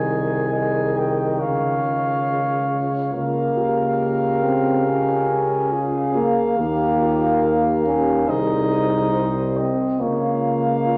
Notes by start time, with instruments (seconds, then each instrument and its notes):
Already playing: tuba C2, euphonium D#3, french horn G#4, flugelhorn D#5, trumpet G#5
0.52 euphonium D#3, french horn G#4, flugelhorn D#5, trumpet G#5
0.97 trumpet G5
1.39 tuba C#2, french horn G#4, flugelhorn C#5, trumpet F5
3.13 tuba C#2, euphonium A#3, french horn F4, flugelhorn A#4, trumpet F5
3.57 french horn G4
4.44 euphonium C4
4.86 euphonium C#4
5.71 french horn F4, flugelhorn G#4, trumpet F5
6.15 euphonium A#3, french horn G#4
6.57 tuba D#2, euphonium A#3, french horn G4, flugelhorn G4
7.00 french horn F4
7.43 french horn G4, flugelhorn A#4
7.86 euphonium C#4, french horn G4
8.28 tuba C2, euphonium D#4, french horn G#4, flugelhorn C5, trumpet D#5
9.14 french horn G4, flugelhorn C5
9.57 euphonium C4, flugelhorn D#5
10.00 tuba C#2, euphonium A#3, french horn F4, flugelhorn C#5, trumpet F5
10.88 french horn F4, flugelhorn C#5